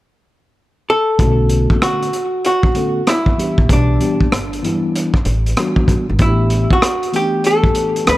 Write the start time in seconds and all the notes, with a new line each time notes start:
0.90 A4
1.18 B1 D3 A3 B3 C#4 F#4, kick, closed hi-hat
1.49 closed hi-hat
1.70 kick
1.82 F#4, cross-stick, closed hi-hat
2.03 closed hi-hat
2.13 closed hi-hat
2.45 F#4, closed hi-hat
2.63 kick
2.74 D3 A3 B3 C#4 A4, closed hi-hat
3.07 E4, cross-stick, closed hi-hat
3.26 kick
3.37 E3 G3 B3 D4 G4, closed hi-hat
3.58 A#1, kick
3.69 B1 D4, kick, closed hi-hat
3.99 E3 G3 B3 D4 G4, closed hi-hat
4.21 kick
4.32 G1, cross-stick, closed hi-hat
4.53 closed hi-hat
4.62 E3 F#3 B3 D4 E4, closed hi-hat
4.69 G3
4.96 closed hi-hat
5.14 kick, cross-stick
5.25 A1, closed hi-hat
5.46 closed hi-hat
5.57 E3 G3 B3 D4 F#4, cross-stick, closed hi-hat
5.76 kick
5.88 kick, closed hi-hat
6.09 G#1
6.19 A1 E3 A3 B3 D4 E4 F#4, kick, closed hi-hat
6.29 G4
6.50 closed hi-hat
6.70 F#4, kick
6.82 cross-stick, closed hi-hat
7.03 closed hi-hat
7.12 E3 A3 B3 C#4 G4, closed hi-hat
7.21 D4
7.44 A4, closed hi-hat
7.64 kick
7.75 closed hi-hat
7.96 closed hi-hat
8.05 D2 F3 A3 C4 D4 A4 B4, cross-stick, closed hi-hat